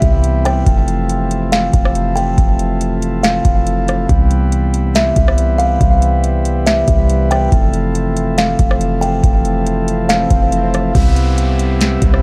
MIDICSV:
0, 0, Header, 1, 7, 480
1, 0, Start_track
1, 0, Key_signature, 0, "major"
1, 0, Tempo, 428571
1, 744, Time_signature, 4, 2, 24, 8
1, 13689, End_track
2, 0, Start_track
2, 0, Title_t, "Kalimba"
2, 0, Program_c, 0, 108
2, 0, Note_on_c, 0, 76, 87
2, 460, Note_off_c, 0, 76, 0
2, 508, Note_on_c, 0, 79, 97
2, 734, Note_off_c, 0, 79, 0
2, 1707, Note_on_c, 0, 77, 88
2, 2382, Note_off_c, 0, 77, 0
2, 2414, Note_on_c, 0, 79, 83
2, 2647, Note_off_c, 0, 79, 0
2, 3622, Note_on_c, 0, 77, 90
2, 4538, Note_off_c, 0, 77, 0
2, 5550, Note_on_c, 0, 76, 89
2, 6224, Note_off_c, 0, 76, 0
2, 6255, Note_on_c, 0, 77, 85
2, 6487, Note_off_c, 0, 77, 0
2, 7465, Note_on_c, 0, 76, 94
2, 8141, Note_off_c, 0, 76, 0
2, 8185, Note_on_c, 0, 79, 94
2, 8413, Note_off_c, 0, 79, 0
2, 9386, Note_on_c, 0, 77, 85
2, 10062, Note_off_c, 0, 77, 0
2, 10094, Note_on_c, 0, 79, 80
2, 10327, Note_off_c, 0, 79, 0
2, 11301, Note_on_c, 0, 77, 92
2, 12218, Note_off_c, 0, 77, 0
2, 13689, End_track
3, 0, Start_track
3, 0, Title_t, "Pipe organ"
3, 0, Program_c, 1, 19
3, 0, Note_on_c, 1, 48, 69
3, 0, Note_on_c, 1, 52, 78
3, 0, Note_on_c, 1, 55, 65
3, 0, Note_on_c, 1, 59, 64
3, 706, Note_off_c, 1, 55, 0
3, 706, Note_off_c, 1, 59, 0
3, 743, Note_on_c, 1, 57, 65
3, 744, Note_on_c, 1, 53, 65
3, 4545, Note_off_c, 1, 57, 0
3, 4546, Note_off_c, 1, 53, 0
3, 4584, Note_on_c, 1, 59, 62
3, 4585, Note_on_c, 1, 55, 65
3, 8380, Note_off_c, 1, 48, 0
3, 8380, Note_off_c, 1, 52, 0
3, 8386, Note_off_c, 1, 55, 0
3, 8386, Note_off_c, 1, 59, 0
3, 8424, Note_on_c, 1, 52, 77
3, 8425, Note_on_c, 1, 48, 72
3, 8425, Note_on_c, 1, 53, 66
3, 8425, Note_on_c, 1, 57, 66
3, 12226, Note_off_c, 1, 48, 0
3, 12226, Note_off_c, 1, 52, 0
3, 12226, Note_off_c, 1, 53, 0
3, 12226, Note_off_c, 1, 57, 0
3, 12265, Note_on_c, 1, 55, 64
3, 12266, Note_on_c, 1, 59, 64
3, 12266, Note_on_c, 1, 64, 78
3, 12267, Note_on_c, 1, 48, 72
3, 13689, Note_off_c, 1, 48, 0
3, 13689, Note_off_c, 1, 55, 0
3, 13689, Note_off_c, 1, 59, 0
3, 13689, Note_off_c, 1, 64, 0
3, 13689, End_track
4, 0, Start_track
4, 0, Title_t, "808-style bass"
4, 0, Program_c, 2, 38
4, 24, Note_on_c, 2, 36, 106
4, 715, Note_off_c, 2, 36, 0
4, 745, Note_on_c, 2, 29, 110
4, 1900, Note_off_c, 2, 29, 0
4, 1945, Note_on_c, 2, 29, 107
4, 2636, Note_off_c, 2, 29, 0
4, 2665, Note_on_c, 2, 29, 107
4, 3820, Note_off_c, 2, 29, 0
4, 3864, Note_on_c, 2, 29, 103
4, 4555, Note_off_c, 2, 29, 0
4, 4584, Note_on_c, 2, 36, 114
4, 5739, Note_off_c, 2, 36, 0
4, 5784, Note_on_c, 2, 36, 103
4, 6475, Note_off_c, 2, 36, 0
4, 6505, Note_on_c, 2, 36, 109
4, 7660, Note_off_c, 2, 36, 0
4, 7705, Note_on_c, 2, 36, 105
4, 8396, Note_off_c, 2, 36, 0
4, 8424, Note_on_c, 2, 29, 105
4, 9579, Note_off_c, 2, 29, 0
4, 9624, Note_on_c, 2, 29, 103
4, 10315, Note_off_c, 2, 29, 0
4, 10344, Note_on_c, 2, 29, 108
4, 11499, Note_off_c, 2, 29, 0
4, 11543, Note_on_c, 2, 29, 109
4, 12235, Note_off_c, 2, 29, 0
4, 12264, Note_on_c, 2, 36, 115
4, 13419, Note_off_c, 2, 36, 0
4, 13463, Note_on_c, 2, 36, 108
4, 13689, Note_off_c, 2, 36, 0
4, 13689, End_track
5, 0, Start_track
5, 0, Title_t, "Downlifter"
5, 0, Program_c, 3, 103
5, 12263, Note_on_c, 3, 60, 84
5, 13689, Note_off_c, 3, 60, 0
5, 13689, End_track
6, 0, Start_track
6, 0, Title_t, "Swell"
6, 0, Program_c, 4, 103
6, 8424, Note_on_c, 4, 60, 88
6, 12264, Note_off_c, 4, 60, 0
6, 13689, End_track
7, 0, Start_track
7, 0, Title_t, "Drums"
7, 21, Note_on_c, 9, 42, 82
7, 23, Note_on_c, 9, 36, 98
7, 133, Note_off_c, 9, 42, 0
7, 135, Note_off_c, 9, 36, 0
7, 265, Note_on_c, 9, 42, 74
7, 377, Note_off_c, 9, 42, 0
7, 507, Note_on_c, 9, 42, 66
7, 515, Note_on_c, 9, 37, 90
7, 619, Note_off_c, 9, 42, 0
7, 627, Note_off_c, 9, 37, 0
7, 744, Note_on_c, 9, 42, 73
7, 745, Note_on_c, 9, 36, 112
7, 856, Note_off_c, 9, 42, 0
7, 857, Note_off_c, 9, 36, 0
7, 984, Note_on_c, 9, 42, 65
7, 1096, Note_off_c, 9, 42, 0
7, 1226, Note_on_c, 9, 42, 73
7, 1338, Note_off_c, 9, 42, 0
7, 1467, Note_on_c, 9, 42, 77
7, 1579, Note_off_c, 9, 42, 0
7, 1705, Note_on_c, 9, 42, 79
7, 1713, Note_on_c, 9, 38, 122
7, 1817, Note_off_c, 9, 42, 0
7, 1825, Note_off_c, 9, 38, 0
7, 1943, Note_on_c, 9, 42, 81
7, 1944, Note_on_c, 9, 36, 93
7, 2055, Note_off_c, 9, 42, 0
7, 2056, Note_off_c, 9, 36, 0
7, 2075, Note_on_c, 9, 37, 96
7, 2187, Note_off_c, 9, 37, 0
7, 2187, Note_on_c, 9, 42, 73
7, 2299, Note_off_c, 9, 42, 0
7, 2429, Note_on_c, 9, 42, 66
7, 2541, Note_off_c, 9, 42, 0
7, 2665, Note_on_c, 9, 36, 109
7, 2665, Note_on_c, 9, 42, 71
7, 2777, Note_off_c, 9, 36, 0
7, 2777, Note_off_c, 9, 42, 0
7, 2904, Note_on_c, 9, 42, 66
7, 3016, Note_off_c, 9, 42, 0
7, 3146, Note_on_c, 9, 42, 75
7, 3258, Note_off_c, 9, 42, 0
7, 3387, Note_on_c, 9, 42, 74
7, 3499, Note_off_c, 9, 42, 0
7, 3625, Note_on_c, 9, 42, 78
7, 3633, Note_on_c, 9, 38, 124
7, 3737, Note_off_c, 9, 42, 0
7, 3745, Note_off_c, 9, 38, 0
7, 3862, Note_on_c, 9, 42, 79
7, 3864, Note_on_c, 9, 36, 93
7, 3974, Note_off_c, 9, 42, 0
7, 3976, Note_off_c, 9, 36, 0
7, 4106, Note_on_c, 9, 42, 72
7, 4218, Note_off_c, 9, 42, 0
7, 4348, Note_on_c, 9, 42, 67
7, 4355, Note_on_c, 9, 37, 93
7, 4460, Note_off_c, 9, 42, 0
7, 4467, Note_off_c, 9, 37, 0
7, 4585, Note_on_c, 9, 36, 116
7, 4585, Note_on_c, 9, 42, 69
7, 4697, Note_off_c, 9, 36, 0
7, 4697, Note_off_c, 9, 42, 0
7, 4824, Note_on_c, 9, 42, 65
7, 4936, Note_off_c, 9, 42, 0
7, 5065, Note_on_c, 9, 42, 76
7, 5177, Note_off_c, 9, 42, 0
7, 5306, Note_on_c, 9, 42, 74
7, 5418, Note_off_c, 9, 42, 0
7, 5545, Note_on_c, 9, 42, 77
7, 5553, Note_on_c, 9, 38, 120
7, 5657, Note_off_c, 9, 42, 0
7, 5665, Note_off_c, 9, 38, 0
7, 5781, Note_on_c, 9, 42, 81
7, 5784, Note_on_c, 9, 36, 91
7, 5893, Note_off_c, 9, 42, 0
7, 5896, Note_off_c, 9, 36, 0
7, 5914, Note_on_c, 9, 37, 97
7, 6025, Note_on_c, 9, 42, 75
7, 6026, Note_off_c, 9, 37, 0
7, 6137, Note_off_c, 9, 42, 0
7, 6267, Note_on_c, 9, 42, 67
7, 6379, Note_off_c, 9, 42, 0
7, 6505, Note_on_c, 9, 36, 111
7, 6505, Note_on_c, 9, 42, 71
7, 6617, Note_off_c, 9, 36, 0
7, 6617, Note_off_c, 9, 42, 0
7, 6744, Note_on_c, 9, 42, 66
7, 6856, Note_off_c, 9, 42, 0
7, 6986, Note_on_c, 9, 42, 74
7, 7098, Note_off_c, 9, 42, 0
7, 7227, Note_on_c, 9, 42, 77
7, 7339, Note_off_c, 9, 42, 0
7, 7465, Note_on_c, 9, 42, 74
7, 7473, Note_on_c, 9, 38, 125
7, 7577, Note_off_c, 9, 42, 0
7, 7585, Note_off_c, 9, 38, 0
7, 7702, Note_on_c, 9, 42, 83
7, 7704, Note_on_c, 9, 36, 91
7, 7814, Note_off_c, 9, 42, 0
7, 7816, Note_off_c, 9, 36, 0
7, 7946, Note_on_c, 9, 42, 72
7, 8058, Note_off_c, 9, 42, 0
7, 8188, Note_on_c, 9, 42, 68
7, 8196, Note_on_c, 9, 37, 93
7, 8300, Note_off_c, 9, 42, 0
7, 8308, Note_off_c, 9, 37, 0
7, 8424, Note_on_c, 9, 42, 69
7, 8425, Note_on_c, 9, 36, 110
7, 8536, Note_off_c, 9, 42, 0
7, 8537, Note_off_c, 9, 36, 0
7, 8663, Note_on_c, 9, 42, 66
7, 8775, Note_off_c, 9, 42, 0
7, 8905, Note_on_c, 9, 42, 76
7, 9017, Note_off_c, 9, 42, 0
7, 9146, Note_on_c, 9, 42, 77
7, 9258, Note_off_c, 9, 42, 0
7, 9383, Note_on_c, 9, 42, 76
7, 9391, Note_on_c, 9, 38, 120
7, 9495, Note_off_c, 9, 42, 0
7, 9503, Note_off_c, 9, 38, 0
7, 9621, Note_on_c, 9, 42, 80
7, 9623, Note_on_c, 9, 36, 90
7, 9733, Note_off_c, 9, 42, 0
7, 9735, Note_off_c, 9, 36, 0
7, 9754, Note_on_c, 9, 37, 98
7, 9865, Note_on_c, 9, 42, 72
7, 9866, Note_off_c, 9, 37, 0
7, 9977, Note_off_c, 9, 42, 0
7, 10107, Note_on_c, 9, 42, 69
7, 10219, Note_off_c, 9, 42, 0
7, 10344, Note_on_c, 9, 36, 114
7, 10344, Note_on_c, 9, 42, 74
7, 10456, Note_off_c, 9, 36, 0
7, 10456, Note_off_c, 9, 42, 0
7, 10584, Note_on_c, 9, 42, 65
7, 10696, Note_off_c, 9, 42, 0
7, 10825, Note_on_c, 9, 42, 71
7, 10937, Note_off_c, 9, 42, 0
7, 11066, Note_on_c, 9, 42, 77
7, 11178, Note_off_c, 9, 42, 0
7, 11304, Note_on_c, 9, 42, 77
7, 11312, Note_on_c, 9, 38, 121
7, 11416, Note_off_c, 9, 42, 0
7, 11424, Note_off_c, 9, 38, 0
7, 11541, Note_on_c, 9, 42, 80
7, 11543, Note_on_c, 9, 36, 97
7, 11653, Note_off_c, 9, 42, 0
7, 11655, Note_off_c, 9, 36, 0
7, 11786, Note_on_c, 9, 42, 75
7, 11898, Note_off_c, 9, 42, 0
7, 12027, Note_on_c, 9, 42, 67
7, 12035, Note_on_c, 9, 37, 92
7, 12139, Note_off_c, 9, 42, 0
7, 12147, Note_off_c, 9, 37, 0
7, 12264, Note_on_c, 9, 36, 115
7, 12264, Note_on_c, 9, 42, 73
7, 12376, Note_off_c, 9, 36, 0
7, 12376, Note_off_c, 9, 42, 0
7, 12503, Note_on_c, 9, 42, 67
7, 12615, Note_off_c, 9, 42, 0
7, 12745, Note_on_c, 9, 42, 80
7, 12857, Note_off_c, 9, 42, 0
7, 12985, Note_on_c, 9, 42, 76
7, 13097, Note_off_c, 9, 42, 0
7, 13224, Note_on_c, 9, 42, 80
7, 13232, Note_on_c, 9, 38, 126
7, 13336, Note_off_c, 9, 42, 0
7, 13344, Note_off_c, 9, 38, 0
7, 13461, Note_on_c, 9, 42, 86
7, 13463, Note_on_c, 9, 36, 100
7, 13573, Note_off_c, 9, 42, 0
7, 13575, Note_off_c, 9, 36, 0
7, 13593, Note_on_c, 9, 37, 95
7, 13689, Note_off_c, 9, 37, 0
7, 13689, End_track
0, 0, End_of_file